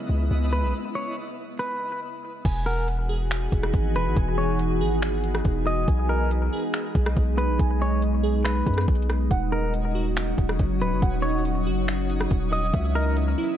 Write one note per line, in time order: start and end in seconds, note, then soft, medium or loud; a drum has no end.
0.00 0.72 C#3 medium
0.00 0.72 G#3 medium
0.00 0.72 B3 medium
0.00 2.42 B3 medium
0.00 0.72 E4 medium
0.00 2.42 E4 medium
0.00 0.70 D#5 medium
0.00 2.42 D#5 medium
0.09 0.30 C#2 loud
0.31 0.64 C#2 loud
0.53 0.73 B4 medium
0.63 0.73 B1 medium
0.95 1.16 C#5 medium
1.59 2.00 B4 medium
2.45 3.48 E1 loud
2.45 5.85 E3 medium
2.45 9.27 B3 medium
2.45 5.85 D#4 medium
2.45 5.85 F#4 medium
2.45 5.85 G#4 medium
2.45 3.74 G#5 loud
2.45 kick loud
2.45 closed hi-hat medium
2.45 crash loud
2.66 2.87 A#4 medium
2.66 3.95 F#5 medium
2.88 closed hi-hat medium
3.09 4.38 G#4 loud
3.31 finger snap loud
3.31 closed hi-hat medium
3.52 3.73 E1 loud
3.52 kick medium
3.52 closed hi-hat medium
3.63 cross-stick medium
3.73 3.97 G#1 loud
3.73 kick medium
3.73 closed hi-hat medium
3.95 4.07 D#1 loud
3.95 4.16 B4 medium
3.95 closed hi-hat medium
4.06 4.16 G#1 loud
4.16 4.82 E1 loud
4.16 5.45 G#5 loud
4.16 kick loud
4.16 closed hi-hat medium
4.38 4.58 C#5 medium
4.38 5.67 F#5 medium
4.59 closed hi-hat medium
4.81 5.42 G#1 loud
4.81 5.88 G#4 loud
5.02 finger snap loud
5.02 closed hi-hat medium
5.24 closed hi-hat medium
5.35 cross-stick medium
5.45 5.86 E1 loud
5.45 kick medium
5.45 closed hi-hat medium
5.67 5.87 D#5 medium
5.67 closed hi-hat medium
5.88 6.50 B1 loud
5.88 9.27 G#3 medium
5.88 12.70 D#4 loud
5.88 7.16 G#5 loud
5.88 kick loud
5.88 closed hi-hat medium
6.09 6.30 A#4 medium
6.09 7.38 D#5 medium
6.31 closed hi-hat medium
6.53 7.81 G#4 loud
6.73 finger snap loud
6.73 closed hi-hat medium
6.95 7.16 B1 loud
6.95 kick medium
6.95 closed hi-hat medium
7.06 cross-stick loud
7.16 7.50 B1 loud
7.16 kick medium
7.16 closed hi-hat medium
7.38 7.58 B4 medium
7.38 closed hi-hat medium
7.49 7.59 A#1 medium
7.59 8.63 B1 loud
7.59 8.88 G#5 loud
7.59 kick loud
7.59 closed hi-hat medium
7.81 8.02 C#5 medium
7.81 9.09 D#5 medium
8.02 closed hi-hat medium
8.23 9.31 G#4 loud
8.45 8.85 B4 medium
8.45 finger snap loud
8.45 closed hi-hat medium
8.67 8.87 F#2 loud
8.67 kick medium
8.67 closed hi-hat medium
8.74 cross-stick loud
8.74 closed hi-hat medium
8.81 closed hi-hat medium
8.88 9.29 B1 loud
8.88 kick medium
8.88 closed hi-hat medium
8.95 closed hi-hat medium
9.02 closed hi-hat medium
9.10 cross-stick medium
9.10 closed hi-hat medium
9.31 10.34 D#1 loud
9.31 12.70 F#3 medium
9.31 12.70 C#4 medium
9.31 12.70 F#4 medium
9.31 13.57 D#5 medium
9.31 10.59 F#5 loud
9.31 kick loud
9.31 closed hi-hat medium
9.52 9.73 A#4 medium
9.52 10.81 D#5 medium
9.74 closed hi-hat medium
9.95 11.24 F#4 medium
10.16 finger snap loud
10.16 closed hi-hat medium
10.38 10.59 D#1 loud
10.38 kick medium
10.38 closed hi-hat medium
10.49 cross-stick medium
10.59 10.82 F#1 loud
10.59 kick medium
10.59 closed hi-hat medium
10.81 10.93 C#1 loud
10.81 11.02 B4 medium
10.81 closed hi-hat medium
10.91 11.02 F#1 loud
11.02 11.68 D#1 loud
11.02 12.31 F#5 loud
11.02 kick loud
11.02 closed hi-hat medium
11.22 11.43 C#5 medium
11.22 12.52 D#5 medium
11.45 closed hi-hat medium
11.66 12.28 F#1 loud
11.66 12.74 F#4 medium
11.88 finger snap loud
11.88 closed hi-hat medium
12.10 closed hi-hat medium
12.21 cross-stick medium
12.31 12.72 D#1 loud
12.31 kick loud
12.31 closed hi-hat medium
12.53 12.73 D#5 medium
12.53 closed hi-hat medium
12.73 13.35 C#2 loud
12.73 13.57 C#3 medium
12.73 13.57 G#3 medium
12.73 13.57 B3 medium
12.73 13.57 C#4 medium
12.73 13.57 E4 medium
12.73 13.57 E4 loud
12.73 13.57 E5 loud
12.73 kick loud
12.73 closed hi-hat medium
12.95 13.16 A#4 medium
12.95 13.57 D#5 medium
13.17 closed hi-hat medium
13.38 13.57 E4 loud